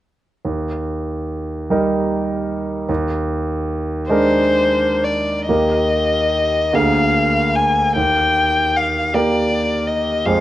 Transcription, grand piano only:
0.45 1.68 D#2 soft
1.70 2.85 G3 soft
1.70 2.85 D#4 soft
1.70 2.85 A#4 soft
2.89 4.06 D#2 soft
4.10 5.44 G#3 soft
4.10 5.45 D4 soft
4.10 5.45 A#4 soft
5.49 6.70 D#2 soft
5.49 6.70 A#3 soft
5.49 6.70 G4 soft
5.49 6.70 A#4 soft
6.73 7.91 D2 soft
6.73 7.91 A#3 soft
6.73 7.91 G#4 soft
6.73 7.91 A#4 soft
7.96 9.10 D#2 soft
9.14 10.22 A#3 soft
9.14 10.22 G4 soft
9.14 10.23 A#4 soft
10.26 10.40 F2 soft
10.26 10.40 G#3 soft
10.26 10.40 G#4 soft
10.26 10.40 C5 soft

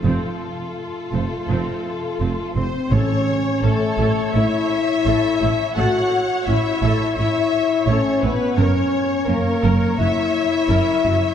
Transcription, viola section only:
0.04 0.38 C4 soft
1.13 1.21 C4 soft
1.49 1.82 C4 soft
2.21 2.29 C4 soft
2.56 2.64 C4 soft
2.92 3.26 A4 medium
2.92 5.72 C#5 medium
3.63 3.71 C#4 soft
3.98 4.32 A4 soft
4.34 4.42 E4 soft
5.07 5.39 A4 medium
5.42 5.50 E4 soft
5.77 6.09 A4 medium
5.77 8.54 C#5 medium
6.47 6.55 C#4 soft
6.82 7.15 A4 medium
7.18 7.26 E4 soft
7.88 8.20 A4 medium
8.23 8.31 E4 soft
8.58 8.90 A#4 medium
8.58 11.34 C#5 medium
9.28 9.36 C#4 soft
9.62 9.96 A#4 medium
9.98 10.06 F#4 soft
10.68 11.01 A#4 medium
11.04 11.12 F#4 medium

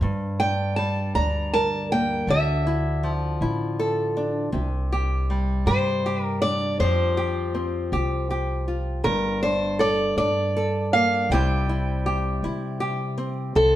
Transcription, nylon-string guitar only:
0.02 2.28 G2 medium
0.40 1.16 D4 soft
0.78 2.24 G3 medium
1.16 2.66 D4 medium
1.54 2.24 A#4 medium
1.92 2.29 A#3 medium
2.28 4.49 D3 medium
2.67 3.41 E4 medium
3.03 4.54 F3 medium
3.42 4.50 E4 medium
3.79 4.50 A4 medium
4.17 4.49 D4 medium
4.52 6.79 C3 medium
4.92 5.67 G4 medium
5.30 6.79 G3 medium
5.67 6.05 G4 medium
6.06 6.82 G4 medium
6.42 6.75 D4 soft
6.80 9.05 F3 medium
6.80 7.53 C4 soft
6.80 8.67 F4 soft
6.80 7.16 G4 medium
7.17 7.92 G4 medium
7.55 9.00 C4 medium
7.93 8.29 G4 medium
8.31 9.79 G4 medium
8.68 9.01 F4 soft
9.04 11.30 G2 medium
9.43 10.17 D4 medium
9.79 10.55 A4 medium
10.18 11.31 D4 medium
10.57 11.27 A4 medium
10.94 11.31 A#3 soft
11.31 13.54 C3 medium
11.31 13.52 G3 soft
11.31 13.17 C4 medium
11.31 11.69 E4 soft
11.31 12.06 G4 medium
11.69 12.44 E4 medium
12.06 12.79 G4 medium
12.44 13.52 E4 medium
12.80 13.76 G4 medium
13.18 13.76 C4 medium
13.55 13.76 C3 medium

